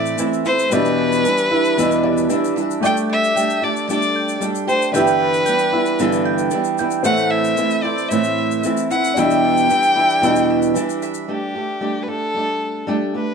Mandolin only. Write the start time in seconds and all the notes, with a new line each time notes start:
Already playing: A3 E4 C5 E5
0.19 E4
0.46 E5
0.73 G3 E5
0.98 D4
1.24 E5
1.50 B4
1.77 D4
2.03 E5
2.30 D4
2.56 E5
2.83 A3 G5
3.10 D4
3.36 G5
3.62 A4
3.88 D4
4.16 G5
4.41 D4
4.68 G5
4.94 G3 G5
5.20 D4
5.46 G5
5.74 B4
6.00 D4
6.25 G5
6.51 D4
6.79 G5
7.04 A3 E5
7.32 E4
7.58 E5
7.85 C5
8.11 E4
8.38 E5
8.64 E4
8.91 E5
9.17 G3 E5
9.45 D4
9.70 E5
9.97 B4
10.23 D4
10.50 E5
10.76 D4
11.02 E5